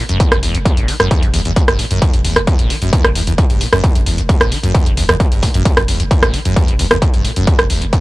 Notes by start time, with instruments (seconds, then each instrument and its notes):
0.09 808-style bass E1, acid bass F#2, closed hi-hat
0.20 acid bass E2, kick, closed hi-hat
0.32 808-style bass E1, acid bass F#2, cross-stick, closed hi-hat
0.43 808-style bass E1, acid bass E2, open hi-hat
0.54 808-style bass E1, acid bass G2, closed hi-hat
0.65 acid bass E2, kick, closed hi-hat
0.77 808-style bass E1, acid bass B2, closed hi-hat
0.88 acid bass E3, open hi-hat
1.00 808-style bass E1, acid bass F#2, cross-stick, closed hi-hat
1.11 acid bass E2, kick, closed hi-hat
1.22 808-style bass E1, acid bass A2, closed hi-hat
1.33 808-style bass E1, acid bass E2, open hi-hat
1.45 808-style bass E1, acid bass E2, closed hi-hat
1.56 acid bass E2, kick, closed hi-hat
1.68 808-style bass E1, acid bass G2, cross-stick, closed hi-hat
1.79 acid bass B2, open hi-hat
1.91 808-style bass E1, acid bass F#2, closed hi-hat
2.02 kick, closed hi-hat
2.13 808-style bass E1, acid bass F#2, closed hi-hat
2.25 808-style bass E1, acid bass E2, open hi-hat
2.36 808-style bass E1, acid bass G2, cross-stick, closed hi-hat
2.47 acid bass E2, kick, closed hi-hat
2.59 808-style bass E1, acid bass B2, closed hi-hat
2.70 acid bass E3, open hi-hat
2.82 808-style bass E1, acid bass F#2, closed hi-hat
2.93 acid bass E2, kick, closed hi-hat
3.04 808-style bass E1, acid bass A2, cross-stick, closed hi-hat
3.15 808-style bass E1, acid bass E2, open hi-hat
3.27 808-style bass E1, acid bass E2, closed hi-hat
3.38 acid bass E2, kick, closed hi-hat
3.50 808-style bass E1, acid bass G2, closed hi-hat
3.61 acid bass B2, open hi-hat
3.72 808-style bass E1, acid bass F#2, cross-stick, closed hi-hat
3.84 acid bass E2, kick, closed hi-hat
3.95 808-style bass E1, acid bass F#2, closed hi-hat
4.06 808-style bass E1, acid bass E2, open hi-hat
4.18 808-style bass E1, acid bass G2, closed hi-hat
4.29 acid bass E2, kick, closed hi-hat
4.41 808-style bass E1, acid bass B2, cross-stick, closed hi-hat
4.52 acid bass E3, open hi-hat
4.63 808-style bass E1, acid bass F#2, closed hi-hat
4.75 acid bass E2, kick, closed hi-hat
4.86 808-style bass E1, acid bass A2, closed hi-hat
4.97 808-style bass E1, acid bass E2, open hi-hat
5.09 808-style bass E1, acid bass E2, cross-stick, closed hi-hat
5.20 acid bass E2, kick, closed hi-hat
5.32 808-style bass E1, acid bass G2, closed hi-hat
5.43 acid bass B2, kick, open hi-hat
5.54 808-style bass E1, acid bass F#2, closed hi-hat
5.65 kick, closed hi-hat
5.77 808-style bass E1, acid bass F#2, cross-stick, closed hi-hat
5.88 808-style bass E1, acid bass E2, open hi-hat
6.00 808-style bass E1, acid bass G2, closed hi-hat
6.11 acid bass E2, kick, closed hi-hat
6.22 808-style bass E1, acid bass B2, cross-stick, closed hi-hat
6.34 acid bass E3, open hi-hat
6.45 808-style bass E1, acid bass F#2, closed hi-hat
6.56 acid bass E2, kick, closed hi-hat
6.68 808-style bass E1, acid bass A2, closed hi-hat
6.79 808-style bass E1, acid bass E2, open hi-hat
6.91 808-style bass E1, acid bass E2, cross-stick, closed hi-hat
7.02 acid bass E2, kick, closed hi-hat
7.13 808-style bass E1, acid bass G2, closed hi-hat
7.24 acid bass B2, open hi-hat
7.36 808-style bass E1, acid bass F#2, closed hi-hat
7.47 kick, closed hi-hat
7.59 808-style bass E1, acid bass F#2, cross-stick, closed hi-hat
7.70 808-style bass E1, acid bass E2, open hi-hat
7.82 808-style bass E1, acid bass G2, closed hi-hat
7.93 acid bass E2, kick, closed hi-hat